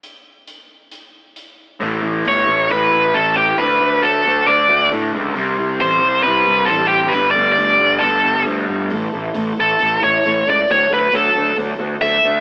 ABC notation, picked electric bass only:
X:1
M:4/4
L:1/8
Q:1/4=135
K:D
V:1 name="Picked electric bass" clef=bass
z8 | A,,, A,,, G,,, A,,, A,,, A,,, A,,,2 | D,, D,, D,, D,, D,, D,, A,, C,, | =C,, C,, A,,, C,, C,, C,, A,,,2 |
G,,, G,,, G,,, G,,, G,,, G,,, D,, G,,, | A,,, A,,, A,,, A,,, A,,, A,,, A,,, C,, | D,, D,, D,, D,, D,, D,, D,, D,, |]